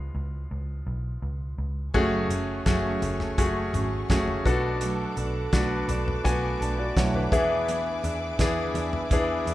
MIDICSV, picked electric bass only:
0, 0, Header, 1, 2, 480
1, 0, Start_track
1, 0, Key_signature, 3, "minor"
1, 0, Tempo, 715990
1, 1305, Time_signature, 4, 2, 24, 8
1, 6398, End_track
2, 0, Start_track
2, 0, Title_t, "Picked electric bass"
2, 0, Program_c, 0, 34
2, 98, Note_on_c, 0, 37, 80
2, 298, Note_off_c, 0, 37, 0
2, 343, Note_on_c, 0, 37, 81
2, 540, Note_off_c, 0, 37, 0
2, 580, Note_on_c, 0, 35, 75
2, 779, Note_off_c, 0, 35, 0
2, 820, Note_on_c, 0, 37, 79
2, 1019, Note_off_c, 0, 37, 0
2, 1062, Note_on_c, 0, 37, 76
2, 1260, Note_off_c, 0, 37, 0
2, 1303, Note_on_c, 0, 30, 89
2, 1501, Note_off_c, 0, 30, 0
2, 1538, Note_on_c, 0, 30, 86
2, 1738, Note_off_c, 0, 30, 0
2, 1783, Note_on_c, 0, 30, 84
2, 1981, Note_off_c, 0, 30, 0
2, 2022, Note_on_c, 0, 30, 92
2, 2220, Note_off_c, 0, 30, 0
2, 2268, Note_on_c, 0, 30, 88
2, 2464, Note_off_c, 0, 30, 0
2, 2504, Note_on_c, 0, 32, 77
2, 2701, Note_off_c, 0, 32, 0
2, 2748, Note_on_c, 0, 30, 92
2, 2944, Note_off_c, 0, 30, 0
2, 2989, Note_on_c, 0, 35, 83
2, 3381, Note_off_c, 0, 35, 0
2, 3467, Note_on_c, 0, 35, 81
2, 3664, Note_off_c, 0, 35, 0
2, 3706, Note_on_c, 0, 35, 84
2, 3903, Note_off_c, 0, 35, 0
2, 3945, Note_on_c, 0, 35, 98
2, 4142, Note_off_c, 0, 35, 0
2, 4190, Note_on_c, 0, 35, 90
2, 4385, Note_off_c, 0, 35, 0
2, 4430, Note_on_c, 0, 35, 83
2, 4625, Note_off_c, 0, 35, 0
2, 4670, Note_on_c, 0, 35, 98
2, 4865, Note_off_c, 0, 35, 0
2, 4908, Note_on_c, 0, 40, 82
2, 5301, Note_off_c, 0, 40, 0
2, 5389, Note_on_c, 0, 40, 93
2, 5584, Note_off_c, 0, 40, 0
2, 5625, Note_on_c, 0, 40, 93
2, 5822, Note_off_c, 0, 40, 0
2, 5863, Note_on_c, 0, 40, 94
2, 6061, Note_off_c, 0, 40, 0
2, 6109, Note_on_c, 0, 40, 98
2, 6304, Note_off_c, 0, 40, 0
2, 6346, Note_on_c, 0, 40, 88
2, 6398, Note_off_c, 0, 40, 0
2, 6398, End_track
0, 0, End_of_file